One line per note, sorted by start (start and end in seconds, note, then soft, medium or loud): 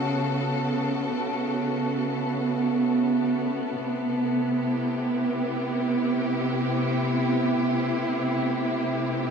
0.00 3.79 C#3 medium
0.00 9.30 A3 medium
0.00 9.30 B3 medium
0.00 9.30 E4 medium
0.00 3.79 F#4 medium
0.00 5.05 A4 medium
3.78 9.30 C3 medium
4.55 9.30 E4 medium
4.55 9.30 G4 medium